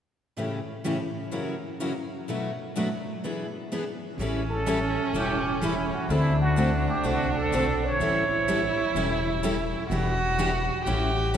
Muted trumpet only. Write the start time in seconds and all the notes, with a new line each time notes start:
4.50 A4
5.16 G4
5.63 E4
5.93 F#4
6.11 E4
6.41 F#4
6.89 G4
7.06 F#4
7.36 A4
7.84 C#5